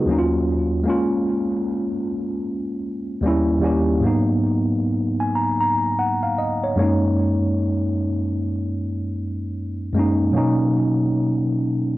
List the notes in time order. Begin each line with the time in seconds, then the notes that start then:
Already playing: D#4 F#4
0.06 D#2 F#3 A#3
0.11 C#4 D#4
0.19 F4
0.83 G#3 A#3
0.88 C#4 F4
3.21 D#2 G3 A#3
3.26 C#4 E4
3.60 D#2 G3 A#3
3.64 C#4 G4
4.01 G#2 F#3 A#3
4.06 B3 D#4
5.20 G#5
5.35 A#5
5.61 A#5
5.99 F#5
6.23 F5
6.38 D#5
6.64 C#5
6.76 F#2 G#3 A#3 C#5
6.80 C#4 D#4
9.93 F#2 G#3 A#3
9.98 C#4 D#4
10.31 B2 F#3 A#3
10.36 C#4 D#4